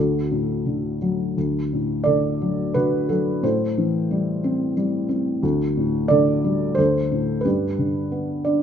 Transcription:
Already playing: D2 F#4 A4
0.31 A2
0.66 D3
1.02 F#3
1.37 D2
1.73 A2
2.04 D3 A4 D5
2.42 F#3
2.74 D3 F#4 B4
3.09 F#3 F#4 A4
3.43 A2 A4 C5
3.78 E3
4.11 G3
4.44 C4
4.77 G3
5.09 C4
5.43 D2
5.77 A2
6.08 D3 A4 D5
6.44 G3
6.75 D2 A4 C5
7.12 A2
7.41 B4
7.45 G2 G4
7.79 D3
8.12 B3
8.45 D4 D5

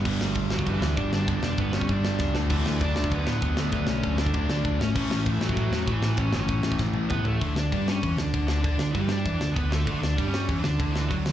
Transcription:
Already playing: B3 B4
0.04 G1 G2 D3 G3 B3 D4, kick, crash
0.19 G1, snare
0.35 G1, kick, ride
0.49 G1 D3 F#3 G3 F#4, snare
0.54 G2
0.59 kick
0.66 G1 G2 D3 E3 G3 B3 D4 E4, kick, ride
0.81 D2 G2 D3 G3, snare
0.96 G1 G2 D3 G3 D4 D5, kick, ride
1.12 G1 D4 D5, snare
1.26 G1 G2 D3 G3 B3 D4, kick, ride
1.42 E1 D4 D5, snare
1.58 G1 B3 B4, kick, ride
1.72 G1 D3 G3 C#5, snare
1.77 G2 C#4
1.81 kick
1.88 G1 G2 D3 G3 B3 D4 D5, kick, ride
2.04 G1 G2 D3 G3, snare
2.19 C#2 G2 D3 G3, kick, snare
2.34 D2 D3 F#3 A3, snare
2.38 D4
2.50 D2 E3 E4, kick, crash, ride
2.66 D2, snare
2.80 D2 D3 A3 D4 D5, kick, ride
2.85 D4
2.95 D2 D3 F#3 A3 D4, snare
3.04 kick
3.11 D2 D3 A3 D4 B4, kick, ride
3.15 B3
3.24 A2 D3 A3 D4 B4, snare
3.28 B3
3.42 D2, kick, ride
3.56 D2 D3 F#3 A3 D4, snare
3.72 D2 B3 B4, kick, ride
3.87 B1 C#4 C#5, snare
4.02 D2 D3 A3 D4, kick, ride
4.17 D2 F#3 A3 D4 D5, snare
4.21 D3 D4
4.26 kick
4.34 D2 D3 A3 D4, kick, ride
4.48 D2 D3 A3 D4, snare
4.64 D2, kick, ride
4.79 G#1 C#4 C#5, snare
4.93 A1 A2 E3 A3 C#4 E4, kick, crash
5.10 A1, snare
5.25 A1, kick, ride
5.33 E4
5.40 A1 E3 F#3 A3, snare
5.44 A2 F#4
5.49 kick
5.56 A1 A2 E3 A3 C#4 E4, kick, ride
5.70 E2 E3 A3, snare
5.76 A2
5.87 A1 A2 E3 A3 E4, kick, ride
6.00 A1, snare
6.16 A1 A2 E3 A3 C#4 E4 C#5, kick, ride
6.32 G1 C#4 C#5, snare
6.48 A1, kick, ride
6.63 A1 A2 E3 A3, snare
6.72 kick
6.78 A1 A2 E3 A3 C#4 E4, kick, snare
6.93 A1 E3 A3, high tom
6.98 A2
7.09 A1 A2 E3 B3 B4, kick, mid tom
7.14 A3
7.23 A1 A3 A4, floor tom
7.41 D2 D3, kick, crash
7.55 D2 D3 D4 D5, snare
7.72 G2 G3, kick, crash
7.88 C#4 C#5, snare
8.02 E2 E3, kick, crash
8.17 D2 D3 D4, snare
8.21 D5
8.34 D2 D3, kick, crash
8.48 D4 D5, snare
8.62 D2 D3 D4 D5, kick, crash
8.78 D2 D3, snare
8.92 G2 E3 G3 E4, kick, crash
9.08 D4 D5, snare
9.25 E2 E3, kick, crash
9.40 D2 D3, snare
9.54 D2 D3 B3 B4, kick, crash
9.69 A3 A4, snare
9.86 D2 D3, kick, crash
9.99 D2 D3 D4 D5
10.03 snare
10.18 G2 G3, kick, crash
10.28 C#4
10.33 C#5, snare
10.49 E2 E3, kick, crash
10.60 D3 D4 D5, snare
10.64 D2
10.79 D2 D3, kick, crash
10.92 E3 E4, snare
11.08 D2 D3 F#3 F#4, kick, crash
11.25 D2 D3, snare

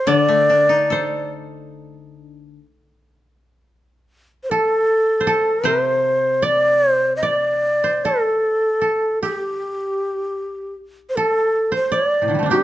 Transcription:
Already playing: C5
0.07 D3 D5
0.28 A3
0.50 D4
0.69 D#4
0.90 A4 C5
4.44 C5
4.50 A4
5.20 C5
5.27 A4
5.64 C3 C5
6.42 D5
6.90 C5
7.17 D#5
7.23 D5
7.84 C5
8.05 A4
8.81 A4
9.23 G4
10.25 D#4
11.09 C5
11.16 A4
11.72 C5
11.92 D5
12.22 A2 C3
12.28 D3 D#3
12.34 G3
12.39 A3 C4
12.46 D4
12.50 D#4 G4

